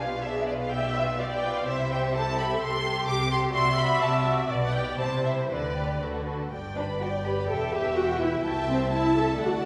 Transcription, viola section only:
0.00 0.21 G4 soft
0.24 0.71 G#4 soft
0.70 1.18 E5 medium
1.20 1.68 D5 soft
1.67 2.14 C5 medium
2.14 3.08 A4 medium
3.08 3.55 G4 soft
3.56 4.49 E5 medium
4.50 5.00 D5 medium
5.00 5.51 C5 soft
5.51 6.26 B4 soft
6.75 6.83 D4 soft
6.99 7.07 F#4 medium
7.25 7.49 G4 medium
7.48 7.73 A4 medium
7.74 7.97 G4 medium
7.95 8.20 F#4 medium
8.20 8.44 E4 medium
8.68 8.90 C4 medium
8.92 9.16 E4 medium
9.17 9.42 A4 medium
9.43 9.65 F#4 medium

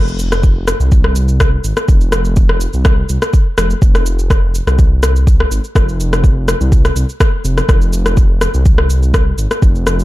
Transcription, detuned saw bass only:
0.00 0.73 F1 loud
0.80 1.58 C2 loud
1.64 1.73 G#1 medium
1.88 2.67 F1 medium
2.74 3.03 C2 loud
3.10 3.18 C2 loud
3.58 3.74 F1 loud
3.82 4.60 F1 loud
4.67 5.45 C2 loud
5.51 5.59 G#1 medium
5.75 6.54 F1 medium
6.61 6.90 C2 loud
6.96 7.04 C2 medium
7.44 7.61 F1 loud
7.68 8.47 F1 loud
8.54 9.32 C2 loud
9.38 9.46 G#1 medium
9.62 10.04 F1 loud

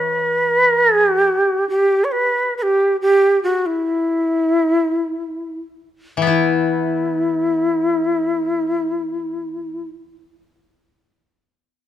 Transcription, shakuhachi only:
0.00 1.10 B4 medium
1.10 1.68 G4 medium
1.69 2.06 G4 medium
2.04 2.13 C#5 medium
2.12 2.54 B4 medium
2.58 2.63 B4 medium
2.62 2.97 G4 medium
3.01 3.42 G4 medium
3.44 3.68 F#4 medium
3.66 5.61 E4 medium
6.27 9.85 E4 medium

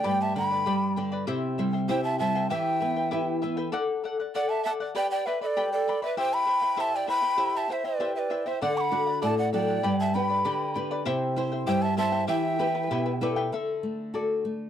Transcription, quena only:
0.00 0.23 G5 loud
0.22 0.36 A5 medium
0.38 0.94 B5 medium
1.89 2.03 G5 medium
2.04 2.19 A5 loud
2.19 2.48 A5 loud
2.50 3.38 G5 medium
4.35 4.51 F#5 medium
4.49 4.64 A5 medium
4.65 4.72 A5 medium
4.97 5.10 G5 loud
5.11 5.28 G5 loud
5.26 5.41 E5 medium
5.43 5.70 D5 loud
5.43 5.48 E5 medium
5.73 6.01 D5 medium
6.03 6.17 E5 medium
6.18 6.35 G5 loud
6.33 6.82 B5 loud
6.80 6.97 A5 loud
6.96 7.09 G5 medium
7.09 7.58 B5 loud
7.57 7.74 A5 loud
7.72 7.87 E5 medium
7.85 8.15 D5 medium
8.16 8.48 D5 medium
8.16 8.20 E5 medium
8.47 8.62 E5 medium
8.62 8.79 F#5 loud
8.77 9.23 B5 loud
8.77 8.82 D6 medium
9.23 9.37 A5 loud
9.38 9.52 F#5 medium
9.54 9.96 G5 medium
10.00 10.16 A5 medium
10.14 10.76 B5 medium
11.67 11.84 G5 loud
11.82 11.98 A5 loud
11.98 12.27 A5 loud
12.28 13.17 G5 loud

